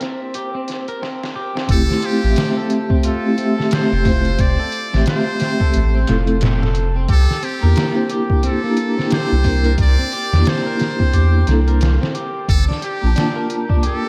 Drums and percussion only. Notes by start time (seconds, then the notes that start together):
0.01 snare, closed hi-hat
0.34 closed hi-hat
0.68 snare, closed hi-hat
0.88 closed hi-hat
1.03 snare
1.24 snare
1.57 snare
1.69 kick, closed hi-hat
1.91 snare
2.02 closed hi-hat
2.36 snare, closed hi-hat
2.70 closed hi-hat
2.90 kick
3.03 closed hi-hat
3.38 closed hi-hat
3.60 snare
3.71 snare, closed hi-hat
4.05 kick, open hi-hat
4.25 closed hi-hat
4.39 kick, closed hi-hat
4.72 closed hi-hat
4.94 snare
5.06 snare, closed hi-hat
5.40 snare, closed hi-hat
5.60 kick
5.74 closed hi-hat
6.07 snare, closed hi-hat
6.27 closed hi-hat
6.41 snare, closed hi-hat
6.63 snare
6.75 closed hi-hat
7.08 kick, closed hi-hat
7.31 snare
7.43 closed hi-hat
7.76 snare, closed hi-hat
8.10 closed hi-hat
8.30 kick
8.43 closed hi-hat
8.77 closed hi-hat
8.99 snare
9.11 snare, closed hi-hat
9.44 kick, open hi-hat
9.64 closed hi-hat
9.78 kick, closed hi-hat
10.12 closed hi-hat
10.33 snare
10.45 snare, closed hi-hat
10.79 snare, closed hi-hat
11.00 kick
11.13 closed hi-hat
11.47 snare, closed hi-hat
11.68 closed hi-hat
11.81 snare, closed hi-hat
12.03 snare
12.15 closed hi-hat
12.48 kick, closed hi-hat
12.71 snare
12.82 closed hi-hat
13.16 snare, closed hi-hat
13.50 closed hi-hat
13.70 kick
13.83 closed hi-hat